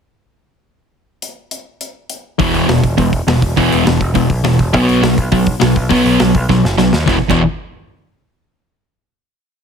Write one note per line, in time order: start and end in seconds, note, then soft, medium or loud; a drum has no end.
1.22 closed hi-hat medium
1.51 closed hi-hat medium
1.81 closed hi-hat medium
2.10 closed hi-hat medium
2.39 2.50 E1 medium
2.39 2.66 E2 medium
2.39 2.67 B2 medium
2.39 2.68 E3 loud
2.39 kick loud
2.39 open hi-hat medium
2.53 2.64 E1 medium
2.53 open hi-hat medium
2.67 2.79 E1 medium
2.67 2.81 E2 medium
2.67 2.82 B2 medium
2.67 snare medium
2.67 open hi-hat medium
2.83 2.94 E1 medium
2.83 kick medium
2.83 open hi-hat medium
2.98 3.20 E1 medium
2.98 3.11 E2 medium
2.98 3.11 B2 medium
2.98 kick loud
2.98 open hi-hat medium
3.13 kick medium
3.13 open hi-hat medium
3.27 3.38 E1 medium
3.27 3.40 E2 medium
3.27 3.40 B2 medium
3.27 snare loud
3.27 open hi-hat medium
3.42 3.53 E1 medium
3.42 kick medium
3.42 open hi-hat medium
3.57 3.68 E1 medium
3.57 3.85 E2 medium
3.57 3.85 B2 loud
3.57 3.85 E3 loud
3.57 kick loud
3.57 open hi-hat medium
3.72 3.83 E1 medium
3.72 open hi-hat medium
3.87 3.97 E1 medium
3.87 3.99 E2 medium
3.87 3.99 B2 medium
3.87 snare loud
3.87 open hi-hat medium
4.01 4.11 E1 medium
4.01 kick medium
4.01 open hi-hat medium
4.15 4.26 E1 medium
4.15 4.28 E2 medium
4.15 4.28 B2 medium
4.15 kick medium
4.15 open hi-hat medium
4.30 4.41 B1 medium
4.30 kick medium
4.30 open hi-hat medium
4.44 4.55 E1 medium
4.44 4.57 E2 medium
4.44 4.57 B2 medium
4.44 snare loud
4.44 open hi-hat medium
4.59 4.74 E1 medium
4.59 kick medium
4.59 open hi-hat medium
4.73 4.85 B1 medium
4.73 5.01 B2 medium
4.73 5.01 F#3 medium
4.73 5.02 B3 loud
4.73 kick loud
4.73 open hi-hat medium
4.88 4.99 B1 medium
4.88 open hi-hat medium
5.02 5.13 B1 medium
5.02 5.15 B2 medium
5.02 5.16 F#3 medium
5.02 snare loud
5.02 open hi-hat medium
5.18 5.28 B1 medium
5.18 kick medium
5.18 open hi-hat medium
5.32 5.54 B1 medium
5.32 5.45 B2 medium
5.32 5.45 F#3 medium
5.32 kick medium
5.32 open hi-hat medium
5.46 kick medium
5.46 open hi-hat medium
5.60 5.72 B1 medium
5.60 5.73 B2 medium
5.60 5.74 F#3 medium
5.60 snare loud
5.60 open hi-hat medium
5.76 5.87 B1 medium
5.76 kick medium
5.76 open hi-hat medium
5.89 6.01 B1 medium
5.89 6.18 B2 loud
5.89 6.18 F#3 medium
5.89 6.18 B3 loud
5.89 kick loud
5.89 open hi-hat medium
6.05 6.16 B1 medium
6.05 open hi-hat medium
6.19 6.31 B1 medium
6.19 6.32 B2 medium
6.19 6.33 F#3 medium
6.19 snare loud
6.19 open hi-hat medium
6.35 6.46 B1 medium
6.35 kick medium
6.35 open hi-hat medium
6.49 6.60 B1 medium
6.49 6.62 B2 medium
6.49 6.63 F#3 medium
6.49 kick medium
6.49 snare medium
6.64 6.75 F#1 medium
6.64 snare medium
6.78 6.89 B1 medium
6.78 6.91 B2 medium
6.78 6.91 F#3 medium
6.78 snare medium
6.93 7.04 D#2 medium
6.93 snare medium
7.06 7.16 E1 medium
7.06 7.15 E2 medium
7.06 7.16 B2 medium
7.06 7.16 E3 loud
7.06 kick loud
7.06 snare medium
7.30 7.43 E1 loud
7.30 7.41 E2 medium
7.30 7.42 B2 medium
7.30 7.42 E3 loud
7.30 kick loud
7.30 crash medium